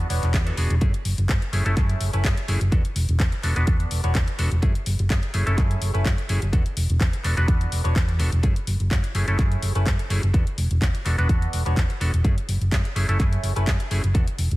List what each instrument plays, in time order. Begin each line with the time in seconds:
0.10 fingered electric bass E1, clav B3 D4 F#4 C#5, open hi-hat
0.23 fingered electric bass E1, clap, closed hi-hat
0.34 fingered electric bass E2, kick, clap, closed hi-hat
0.46 clav B3 D4 F#4 A4, closed hi-hat
0.57 fingered electric bass E1, clav B3 D4 F#4 G#4, open hi-hat
0.70 fingered electric bass E1, closed hi-hat
0.81 fingered electric bass F#2, clav A3 C#4 E4 G#4, kick, closed hi-hat
0.94 closed hi-hat
1.05 fingered electric bass F#1, open hi-hat
1.18 fingered electric bass F#1, closed hi-hat
1.29 fingered electric bass F#2, kick, clap, closed hi-hat
1.42 closed hi-hat
1.52 fingered electric bass F#1, clav A3 C#4 E4 G#4, open hi-hat
1.65 fingered electric bass F#1, clav A3 C#4 E4 A4, closed hi-hat
1.77 fingered electric bass F#2, clav C#4 E4, kick, clap, closed hi-hat
1.90 closed hi-hat
2.00 fingered electric bass F#1, open hi-hat
2.13 fingered electric bass F#1, clav A3 C#4 E4 B4, closed hi-hat
2.24 fingered electric bass F#2, kick, clap, closed hi-hat
2.37 closed hi-hat
2.48 fingered electric bass F#1, clav A3 C#4 E4 G#4, open hi-hat
2.61 fingered electric bass F#1, closed hi-hat
2.72 fingered electric bass E2, clav B3 D4 F#4 A4, kick, closed hi-hat
2.85 closed hi-hat
2.96 fingered electric bass E1, open hi-hat
3.09 fingered electric bass E1, closed hi-hat
3.20 fingered electric bass E2, kick, clap, closed hi-hat
3.32 closed hi-hat
3.43 fingered electric bass E1, clav B3 D4 F#4 A4, clap, open hi-hat
3.56 fingered electric bass E1, clav B3 D4 F#4 B4, closed hi-hat
3.67 fingered electric bass E2, kick, closed hi-hat
3.80 closed hi-hat
3.91 fingered electric bass E1, open hi-hat
4.04 fingered electric bass E1, clav B3 D4 F#4 C#5, closed hi-hat
4.15 kick, clap, closed hi-hat
4.28 closed hi-hat
4.39 fingered electric bass E1, clav B3 D4 F#4 A4, open hi-hat
4.52 fingered electric bass E1, closed hi-hat
4.62 fingered electric bass F#2, clav A3 C#4 E4 G#4, kick, closed hi-hat
4.75 closed hi-hat
4.86 fingered electric bass F#1, open hi-hat
4.99 fingered electric bass F#1, closed hi-hat
5.10 fingered electric bass F#2, kick, clap, closed hi-hat
5.23 closed hi-hat
5.33 fingered electric bass F#1, clav A3 C#4 E4 G#4, open hi-hat
5.46 fingered electric bass F#1, clav A3 C#4 E4 A4, closed hi-hat
5.57 fingered electric bass F#2, clav A3 C#4 G#4, kick, clap, closed hi-hat
5.71 closed hi-hat
5.82 fingered electric bass F#1, open hi-hat
5.94 fingered electric bass F#1, clav A3 C#4 E4 B4, closed hi-hat
6.05 fingered electric bass F#2, kick, clap, closed hi-hat
6.18 closed hi-hat
6.29 fingered electric bass F#1, clav A3 C#4 E4 G#4, open hi-hat
6.42 fingered electric bass F#1, closed hi-hat
6.53 fingered electric bass E2, clav B3 D4 F#4 A4, kick, closed hi-hat
6.66 closed hi-hat
6.77 fingered electric bass E1, open hi-hat
6.90 fingered electric bass E1, closed hi-hat
7.01 fingered electric bass E2, kick, clap, closed hi-hat
7.13 closed hi-hat
7.24 fingered electric bass E1, clav B3 D4 F#4 A4, clap, open hi-hat
7.37 fingered electric bass E1, clav B3 D4 F#4 B4, closed hi-hat
7.47 fingered electric bass E2, clav B3 D4 F#4 A4, kick, closed hi-hat
7.61 closed hi-hat
7.72 fingered electric bass E1, open hi-hat
7.84 fingered electric bass E1, clav B3 D4 F#4 C#5, closed hi-hat
7.96 fingered electric bass E2, kick, clap, closed hi-hat
8.09 closed hi-hat
8.19 fingered electric bass E1, clav B3 D4 F#4 A4, open hi-hat
8.32 fingered electric bass E1, closed hi-hat
8.43 fingered electric bass F#2, clav A3 C#4 E4 G#4, kick, closed hi-hat
8.56 closed hi-hat
8.67 fingered electric bass F#1, open hi-hat
8.80 fingered electric bass F#1, closed hi-hat
8.91 fingered electric bass F#2, kick, clap, closed hi-hat
9.04 closed hi-hat
9.15 fingered electric bass F#1, clav A3 C#4 E4 G#4, open hi-hat
9.27 fingered electric bass F#1, clav A3 C#4 E4 A4, closed hi-hat
9.39 fingered electric bass F#2, kick, clap, closed hi-hat
9.52 closed hi-hat
9.62 fingered electric bass F#1, open hi-hat
9.75 fingered electric bass F#1, clav A3 C#4 E4 B4, closed hi-hat
9.86 fingered electric bass F#2, kick, clap, closed hi-hat
9.99 closed hi-hat
10.10 fingered electric bass F#1, clav A3 C#4 E4 G#4, open hi-hat
10.23 fingered electric bass F#1, closed hi-hat
10.34 fingered electric bass E2, clav B3 D4 F#4 A4, kick, closed hi-hat
10.47 closed hi-hat
10.58 fingered electric bass E1, open hi-hat
10.71 fingered electric bass E1, closed hi-hat
10.82 fingered electric bass E2, kick, clap, closed hi-hat
10.95 closed hi-hat
11.05 fingered electric bass E1, clav B3 D4 F#4 A4, clap, open hi-hat
11.18 fingered electric bass E1, clav B3 D4 F#4 B4, closed hi-hat
11.29 fingered electric bass E2, clav B3 D4 F#4, kick, closed hi-hat
11.42 closed hi-hat
11.53 fingered electric bass E1, open hi-hat
11.66 fingered electric bass E1, clav B3 D4 F#4 C#5, closed hi-hat
11.77 fingered electric bass E2, kick, clap, closed hi-hat
11.90 closed hi-hat
12.01 fingered electric bass E1, clav B3 D4 F#4 A4, open hi-hat
12.14 fingered electric bass E1, closed hi-hat
12.24 fingered electric bass F#2, clav A3 C#4 E4 G#4, kick, closed hi-hat
12.38 closed hi-hat
12.48 fingered electric bass F#1, open hi-hat
12.61 fingered electric bass F#1, closed hi-hat
12.72 fingered electric bass F#2, kick, clap, closed hi-hat
12.85 closed hi-hat
12.95 fingered electric bass F#1, clav A3 C#4 E4 G#4, open hi-hat
13.08 fingered electric bass F#1, clav A3 C#4 E4 A4, closed hi-hat
13.20 fingered electric bass F#2, kick, clap, closed hi-hat
13.33 closed hi-hat
13.43 fingered electric bass F#1, open hi-hat
13.56 fingered electric bass F#1, clav A3 C#4 E4 B4, closed hi-hat
13.67 fingered electric bass F#2, kick, clap, closed hi-hat
13.80 closed hi-hat
13.91 fingered electric bass F#1, clav A3 C#4 E4 G#4, open hi-hat
14.04 fingered electric bass F#1, closed hi-hat
14.14 fingered electric bass E2, clav B3 D4 F#4 A4, kick, closed hi-hat
14.27 closed hi-hat
14.38 fingered electric bass E1, open hi-hat
14.51 fingered electric bass E1, closed hi-hat